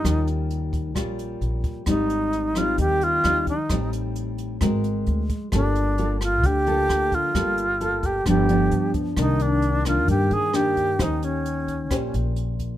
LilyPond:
<<
  \new Staff \with { instrumentName = "Alto flute" } { \time 4/4 \key g \minor \tempo 4 = 131 ees'8 r2. r8 | ees'4. f'8 g'8 f'4 ees'8~ | ees'8 r2. r8 | d'4. f'8 g'4. f'8~ |
f'4. g'8 g'4. r8 | \key c \minor ees'8 d'4 f'8 g'8 aes'8 g'4 | ees'8 des'2 r4. | }
  \new Staff \with { instrumentName = "Nylon-string guitar" } { \time 4/4 \key g \minor << { <g des' f'>2 <g des' f'>2 | <g c' ees'>4. <g c' ees'>4. <g c' ees'>8 r8 | <g c' ees'>2 <c' ges' bes'>4. r8 | <bes f' a'>4 <bes f' a'>4 r8 <bes f' a'>4. |
<bes f' a'>8 r8 <bes f' a'>4 <f b d'>8 <f b d'>4. | \key c \minor <ees bes d'>4. <ees bes d'>4. <ees bes d'>4 | <des' g' c''>4. r8 <des' g' c''>4. r8 | } \\ { ees2 bes,2 | aes,2 ees2 | a,2 aes2 | g2 d2 |
g2 g,2 | c2 g,2 | ees2 bes,2 | } >> }
  \new Staff \with { instrumentName = "Upright bass" } { \clef bass \time 4/4 \key g \minor ees,2 bes,,4 bes,,8 r8 | aes,,2 ees,4 ees,8 r8 | a,,2 aes,,4 d,8 r8 | g,,2 d,4 d,8 r8 |
g,,2 g,,4 g,8 r8 | \key c \minor c,2 g,8 g,4. | ees,2 bes,,8 bes,,4. | }
  \new DrumStaff \with { instrumentName = "Drums" } \drummode { \time 4/4 <hh bd ss>8 hh8 hh8 <hh bd>8 <hh bd ss>8 hh8 hh8 <hh bd>8 | <hh bd ss>8 hh8 hh8 <hh ss>8 <hh bd>8 hh8 <hh ss>8 <hh bd>8 | <hh bd ss>8 hh8 hh8 hh8 <hh bd ss>8 hh8 hh8 <hh bd>8 | <hh bd ss>8 hh8 hh8 <hh ss>8 <hh bd>8 hh8 <hh ss>8 <hh bd>8 |
<hh bd ss>8 hh8 hh8 <hh bd>8 <hh bd ss>8 hh8 hh8 <hh bd>8 | <hh bd ss>8 hh8 hh8 <hh bd ss>8 <hh bd>8 hh8 <hh ss>8 <hh bd>8 | <hh bd ss>8 hh8 hh8 <hh bd>8 <hh bd ss>8 hh8 hh8 <hh bd>8 | }
>>